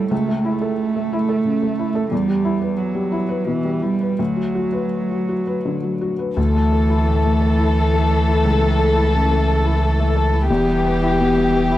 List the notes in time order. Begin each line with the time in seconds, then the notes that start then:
Already playing: D2 A2 G3 A3 E4 A4
0.11 C#2 A3
0.28 A3
0.44 A3 E4
0.61 A4
0.96 A3
1.13 E4
1.29 A4
1.45 C#3
1.62 A3
1.79 E4
1.95 A4
2.11 E2 G3
2.28 G3
2.45 E4
2.62 B4
2.78 F#3
2.94 G3
3.12 E4
3.29 B4
3.46 B2 E3
3.65 G3
3.82 G3 E4
4.01 B4
4.19 D2 F#3
4.36 F#3
4.55 F#4
4.73 B4
5.11 F#3
5.29 F#4
5.47 B4
5.65 D3
5.83 F#3
6.01 F#4
6.19 B4
6.37 D2 E3 A3 A4
6.54 A3
6.72 A4
6.90 E4
7.06 A2
7.25 A3
7.42 A4
7.58 E4
7.93 A3
8.10 A4
8.28 E4
8.44 C#2
8.62 A3
8.78 A4
8.95 E4
9.14 C#3
9.31 A3
9.48 A4
9.65 E4
10.00 A3
10.16 A4
10.33 E4
10.49 E1 E2 E3 B3 G4
10.67 G3
10.85 B4
11.02 E4
11.19 B2
11.36 G3
11.53 B4
11.71 E4